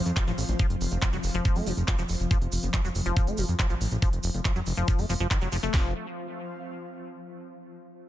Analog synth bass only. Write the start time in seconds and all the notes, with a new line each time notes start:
0.06 F2
0.27 A1
0.38 A1
0.49 A1
0.70 F1
0.81 F1
0.92 F1
1.13 F1
1.24 F1
1.34 F1
1.56 F2
1.67 F1
1.77 F1
1.99 F1
2.09 F1
2.20 F1
2.42 F1
2.52 F1
2.63 F1
2.84 F1
2.95 F1
3.06 F1
3.27 F1
3.38 F1
3.49 F2
3.70 A1
3.81 A1
3.92 A1
4.13 F1
4.24 F1
4.34 F1
4.56 F1
4.67 F1
4.77 F1
4.99 F2
5.09 F1
5.20 F1
5.42 F1
5.52 F1
5.63 F1
5.74 F1